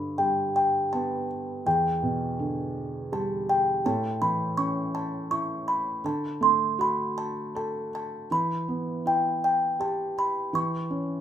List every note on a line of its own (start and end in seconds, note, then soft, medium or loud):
0.00 1.62 G2 medium
0.00 1.26 D3 soft
0.00 0.20 B5 medium
0.18 1.62 G3 soft
0.18 0.55 G5 medium
0.56 0.94 G5 medium
0.93 1.64 B3 soft
0.93 1.68 A5 medium
1.66 3.80 E2 medium
1.66 2.35 G5 medium
2.03 3.44 B2 soft
2.39 3.81 D3 medium
3.12 3.82 G3 soft
3.12 3.50 A5 medium
3.49 3.86 G5 medium
3.86 6.01 A2 medium
3.86 4.22 A5 medium
4.22 5.63 E3 soft
4.22 4.55 B5 medium
4.57 6.00 C#4 soft
4.57 4.95 C#6 medium
4.95 5.28 A5 medium
5.31 6.02 E4 medium
5.31 5.68 C#6 medium
5.68 6.06 B5 medium
6.04 8.27 D3 medium
6.04 6.22 A5 medium
6.41 7.89 A3 soft
6.41 6.80 C6 medium
6.79 8.27 F#4 soft
6.79 7.18 B5 medium
7.18 7.55 A5 medium
7.55 8.29 A4 medium
7.55 7.94 A5 medium
7.95 8.33 A5 medium
8.31 10.50 E3 medium
8.31 9.08 B5 medium
8.68 10.13 B3 soft
9.06 10.50 E4 soft
9.06 9.43 G5 medium
9.44 9.82 G5 medium
9.80 10.51 G4 soft
9.80 10.19 A5 medium
10.19 10.52 B5 medium
10.53 11.21 E3 medium
10.53 11.21 C#6 medium
10.91 11.21 C#4 soft